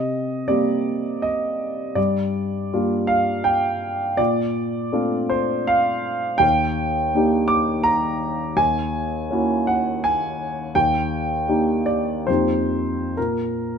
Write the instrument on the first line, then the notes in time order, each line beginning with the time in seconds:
grand piano
Already playing: C3 D#5
0.48 G3 A#3 C4 G4 D5
1.22 D#5
1.95 G2 D5
2.73 G3 A#3 D4 F4
3.07 F5
3.44 G5
4.17 A#2 D5
4.92 A3 C4 D4 F4
5.30 C5
5.67 F5
6.38 D#2 G5
7.15 A#3 D4 D#4 G4
7.48 D6
7.83 A#5
8.57 D#2 G#5
9.31 A#3 C#4 E4 F#4
9.67 F#5
10.04 G#5
10.75 D#2 G5
11.48 A#3 D4 D#4 G4
11.86 D5
12.27 F2 A#3 C4 D#4 G4 C5
13.17 A#2 A#4